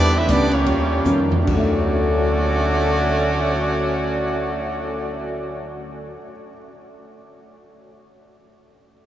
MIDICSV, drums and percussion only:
0, 0, Header, 1, 3, 480
1, 0, Start_track
1, 0, Key_signature, 2, "major"
1, 0, Tempo, 364299
1, 862, Tempo, 410397
1, 1822, Time_signature, 4, 2, 24, 8
1, 1822, Tempo, 443131
1, 10038, End_track
2, 0, Start_track
2, 0, Title_t, "Cymbal swell"
2, 2124, Note_on_c, 9, 59, 47
2, 5554, Note_off_c, 9, 59, 0
2, 10038, End_track
3, 0, Start_track
3, 0, Title_t, "Drums"
3, 376, Note_on_c, 9, 38, 77
3, 376, Note_on_c, 9, 44, 65
3, 376, Note_on_c, 9, 51, 80
3, 508, Note_off_c, 9, 38, 0
3, 508, Note_off_c, 9, 44, 0
3, 508, Note_off_c, 9, 51, 0
3, 678, Note_on_c, 9, 51, 54
3, 810, Note_off_c, 9, 51, 0
3, 873, Note_on_c, 9, 51, 66
3, 990, Note_off_c, 9, 51, 0
3, 1324, Note_on_c, 9, 44, 63
3, 1441, Note_off_c, 9, 44, 0
3, 1636, Note_on_c, 9, 43, 81
3, 1753, Note_off_c, 9, 43, 0
3, 1818, Note_on_c, 9, 49, 67
3, 1822, Note_on_c, 9, 36, 61
3, 1927, Note_off_c, 9, 49, 0
3, 1931, Note_off_c, 9, 36, 0
3, 10038, End_track
0, 0, End_of_file